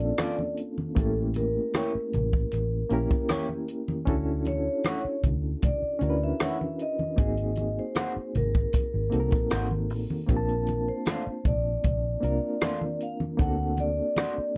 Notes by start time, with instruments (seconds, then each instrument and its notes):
Already playing: fingered electric bass A#1, reed electric piano A#3 C4 C#4 D4 F4 A4, vibraphone D5
0.18 clean electric guitar D4 F4 A4 D5, cross-stick, closed hi-hat, high conga
0.39 high conga
0.57 closed hi-hat
0.78 high conga
0.95 fingered electric bass A1, reed electric piano A3 A#3 C#4 E4 G4, kick, closed hi-hat, muted conga
0.99 vibraphone A4
1.34 vibraphone A#4, closed hi-hat, muted conga
1.74 clean electric guitar A#3 E4 G4 C#5, cross-stick, closed hi-hat, high conga
1.95 muted fingered electric bass stroke
2.13 fingered electric bass A1, closed hi-hat, low conga
2.33 kick
2.52 fingered electric bass A1, closed hi-hat, muted conga
2.90 fingered electric bass A#1, reed electric piano A#3 C#4 E4 G4 A#4, closed hi-hat
3.11 kick
3.29 clean electric guitar A#3 E4 G4 C#5, cross-stick, closed hi-hat, high conga
3.49 high conga
3.68 closed hi-hat
3.88 high conga
4.05 fingered electric bass D2, reed electric piano C#4 D4 E4 F#4 A4, kick, closed hi-hat, muted conga
4.45 vibraphone C#5, closed hi-hat, muted conga
4.84 clean electric guitar A3 E4 F#4 C#5, cross-stick, closed hi-hat, high conga
5.05 muted fingered electric bass stroke
5.24 fingered electric bass D2, kick, closed hi-hat, low conga
5.62 vibraphone D5, kick, closed hi-hat, muted conga, low conga
5.82 muted fingered electric bass stroke
5.99 fingered electric bass D2, reed electric piano C#4 D4 E4 F#4, closed hi-hat, muted conga
6.03 reed electric piano A#4
6.10 reed electric piano B4
6.24 vibraphone E5
6.40 clean electric guitar A3 E4 F#4 C#5, cross-stick, closed hi-hat, high conga
6.61 high conga
6.79 vibraphone D#5, closed hi-hat
6.99 high conga
7.16 fingered electric bass G#1, reed electric piano A#3 C4 D#4 F#4 G#4, kick, closed hi-hat, muted conga
7.37 closed hi-hat
7.55 closed hi-hat, muted conga
7.79 vibraphone C5
7.95 clean electric guitar A#3 D#4 F#4 C5, cross-stick, closed hi-hat, high conga
8.16 muted fingered electric bass stroke
8.35 fingered electric bass G#1, vibraphone A#4, closed hi-hat, low conga
8.55 kick
8.73 kick, closed hi-hat, muted conga
8.94 fingered electric bass G#1
9.10 fingered electric bass C2, reed electric piano A#3 C4 D#4 F#4 A4, closed hi-hat, muted conga
9.20 reed electric piano A#4
9.31 fingered electric bass A#1, kick, closed hi-hat
9.50 fingered electric bass G#1, clean electric guitar A#3 D#4 F#4 C5, cross-stick, closed hi-hat, high conga
9.71 high conga
9.90 fingered electric bass A1, open hi-hat
10.10 high conga
10.27 fingered electric bass A#1, reed electric piano A#3 C4 D4 F4 G4, vibraphone A#4, kick, closed hi-hat, muted conga
10.37 reed electric piano A5
10.49 closed hi-hat
10.67 closed hi-hat, muted conga
10.88 vibraphone C5
11.06 clean electric guitar A3 D4 F4 C5, cross-stick, closed hi-hat, high conga
11.27 muted fingered electric bass stroke
11.45 fingered electric bass A#1, vibraphone D5, kick, closed hi-hat, low conga
11.84 fingered electric bass A#1, kick, closed hi-hat, muted conga, low conga
12.21 fingered electric bass C2, reed electric piano A#3 C4 D4 F4 A#4, closed hi-hat
12.61 clean electric guitar A3 D4 F4 C5, cross-stick, closed hi-hat, high conga
12.81 high conga
13.00 vibraphone F5, closed hi-hat
13.20 high conga
13.37 fingered electric bass D2, reed electric piano A#3 C4 D4 D#4, vibraphone F#5, kick, closed hi-hat, muted conga
13.41 reed electric piano A4
13.47 reed electric piano F#4
13.77 vibraphone D5, closed hi-hat, muted conga
14.16 clean electric guitar A#3 D4 F#4 C5, cross-stick, closed hi-hat, high conga
14.38 muted fingered electric bass stroke